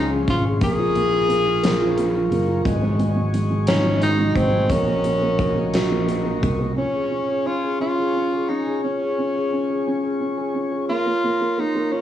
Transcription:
Already playing: fingered electric bass C#2, felt piano C#4 G#4, tenor saxophone D#4, tonewheel organ G#4 F5 C6 C#6
0.10 felt piano G#4
0.27 fingered electric bass G#1, felt piano C#4, tenor saxophone F4, kick, closed hi-hat
0.45 felt piano G#4
0.61 fingered electric bass A#1, felt piano A#3, tenor saxophone G#4, tonewheel organ A#5, kick, closed hi-hat
0.78 felt piano F4
0.95 felt piano A#3, closed hi-hat
1.12 felt piano F4
1.29 felt piano A#3, closed hi-hat
1.47 felt piano F4
1.63 felt piano A#3, snare, closed hi-hat
1.81 felt piano F4
1.98 felt piano A#3, closed hi-hat
2.15 felt piano F4
2.31 fingered electric bass F#1, felt piano A#3, closed hi-hat
2.48 felt piano F4
2.65 fingered electric bass G#1, felt piano G#3, tonewheel organ F#4 D#5 G#5, kick, closed hi-hat
2.82 felt piano G#3
2.99 felt piano G#3, closed hi-hat
3.16 felt piano G#3
3.34 felt piano G#3, closed hi-hat
3.51 felt piano G#3
3.67 tenor saxophone C#4, felt piano D#4, snare, closed hi-hat
3.85 felt piano G#3
4.01 felt piano G#3, tenor saxophone D#4, closed hi-hat
4.18 felt piano G#3
4.36 fingered electric bass G#1, felt piano G#3, tenor saxophone C4, kick, closed hi-hat
4.53 felt piano G#3
4.70 fingered electric bass A#1, felt piano A#3, tenor saxophone C#4, tonewheel organ A#5 C#6, kick, closed hi-hat
4.87 felt piano A#3
5.04 felt piano A#3, closed hi-hat
5.22 felt piano A#3
5.39 felt piano A#3, kick, closed hi-hat
5.56 felt piano A#3
5.73 felt piano F#4, snare, closed hi-hat
5.90 felt piano A#3
6.07 felt piano A#3, closed hi-hat
6.24 felt piano A#3
6.42 fingered electric bass C2, felt piano A#3, kick, closed hi-hat
6.59 felt piano A#3
6.76 felt piano C#4, tenor saxophone C#4, tonewheel organ F4 C#5 G#5 C#6
6.93 felt piano G#4
7.10 felt piano C#4
7.28 felt piano G#4
7.46 felt piano C#4, tenor saxophone F4
7.63 felt piano G#4
7.80 felt piano C#4, tenor saxophone F4
7.98 felt piano G#4
8.15 felt piano C#4
8.33 felt piano G#4
8.49 felt piano C#4, tenor saxophone D#4
8.67 felt piano G#4
8.83 tenor saxophone C#4, felt piano C#4
9.02 felt piano G#4
9.18 felt piano C#4
9.35 felt piano G#4
9.52 felt piano C#4
9.70 felt piano G#4
9.87 felt piano C#4
10.03 felt piano G#4
10.20 felt piano C#4
10.37 felt piano G#4
10.54 felt piano C#4
10.72 felt piano G#4
10.89 felt piano A#3, tenor saxophone F4, tonewheel organ A#5 C6
11.06 felt piano A#3
11.24 felt piano A#3
11.40 felt piano A#3
11.58 felt piano A#3, tenor saxophone D#4
11.75 felt piano A#3
11.91 tenor saxophone C#4, felt piano F4

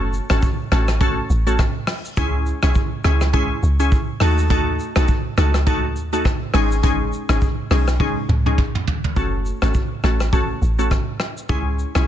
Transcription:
Already playing: log drum bass F#1, synth pluck A3 C#4 F#4 A4
0.13 shaker
0.30 log drum bass G#1, synth pluck A3 C#4 F#4 A4, cross-stick, shaker
0.42 kick, shaker
0.72 log drum bass A1, synth pluck A3 C#4 F#4 A4, cross-stick, shaker
0.88 cross-stick, shaker
1.01 synth pluck A3 C#4 F#4 A4, kick, shaker
1.30 log drum bass A1, shaker
1.47 synth pluck A3 C#4 F#4 A4, shaker
1.59 kick, cross-stick, shaker
1.87 cross-stick, open hi-hat, shaker
2.05 shaker
2.17 log drum bass C#2, synth pluck G#3 C#4 E4 G#4, kick, hi-hat pedal, shaker
2.46 shaker
2.63 log drum bass B1, synth pluck G#3 C#4 E4 G#4, cross-stick, shaker
2.75 kick, shaker
3.04 log drum bass C#2, synth pluck G#3 C#4 E4 G#4, cross-stick, shaker
3.21 cross-stick, shaker
3.33 synth pluck G#3 C#4 E4 G#4, kick, shaker
3.63 log drum bass C#2, shaker
3.80 synth pluck G#3 C#4 E4 G#4, shaker
3.92 kick, shaker
4.20 log drum bass D#2, synth pluck A3 D#4 F#4 A4, cross-stick, open hi-hat, shaker
4.38 shaker
4.50 synth pluck A3 D#4 F#4 A4, kick, hi-hat pedal, shaker
4.79 shaker
4.96 log drum bass B1, synth pluck A3 D#4 F#4 A4, cross-stick, shaker
5.08 kick, shaker
5.37 log drum bass C#2, synth pluck A3 D#4 F#4 A4, cross-stick, shaker
5.54 cross-stick, shaker
5.67 synth pluck A3 D#4 F#4 A4, kick, shaker
5.96 log drum bass D#2, shaker
6.13 synth pluck A3 D#4 F#4 A4, shaker
6.25 kick, cross-stick, shaker
6.54 log drum bass G#1, synth pluck G#3 C#4 D#4 G#4, cross-stick, open hi-hat, shaker
6.72 shaker
6.83 synth pluck G#3 C#4 D#4 G#4, kick, hi-hat pedal, shaker
7.13 shaker
7.29 log drum bass G#1, synth pluck G#3 C#4 D#4 G#4, cross-stick, shaker
7.42 kick, shaker
7.71 log drum bass B1, synth pluck G#3 C#4 D#4 G#4, cross-stick, open hi-hat, shaker
7.88 cross-stick, shaker
8.00 synth pluck G#3 C#4 D#4 G#4, kick, high tom
8.29 log drum bass C#2, mid tom
8.46 synth pluck G#3 C#4 D#4 G#4, mid tom
8.58 kick, mid tom
8.75 mid tom
8.87 floor tom
9.04 floor tom
9.16 log drum bass F#1, synth pluck A3 C#4 F#4 A4, kick, shaker
9.46 shaker
9.62 log drum bass G#1, synth pluck A3 C#4 F#4 A4, cross-stick, shaker
9.74 kick, shaker
10.04 log drum bass A1, synth pluck A3 C#4 F#4 A4, cross-stick, shaker
10.20 cross-stick, shaker
10.33 synth pluck A3 C#4 F#4 A4, kick, shaker
10.62 log drum bass A1, shaker
10.79 synth pluck A3 C#4 F#4 A4, shaker
10.91 kick, cross-stick, shaker
11.20 cross-stick, shaker
11.37 shaker
11.49 log drum bass C#2, synth pluck G#3 C#4 E4 G#4, kick, shaker
11.79 shaker
11.95 log drum bass B1, synth pluck G#3 C#4 E4 G#4, cross-stick, shaker

